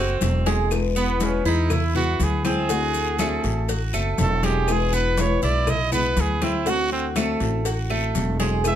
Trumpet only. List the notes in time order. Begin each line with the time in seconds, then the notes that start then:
Already playing: F#4
0.97 B3
1.24 C#4
1.47 D#4
1.73 E4
1.96 F#4
2.23 G#4
2.46 G#4
4.22 A4
4.45 G4
4.72 G#4
4.95 B4
5.21 C#5
5.44 D5
5.70 D#5
5.93 B4
6.20 G#4
6.44 E4
6.69 F#4
6.92 C4
8.67 E5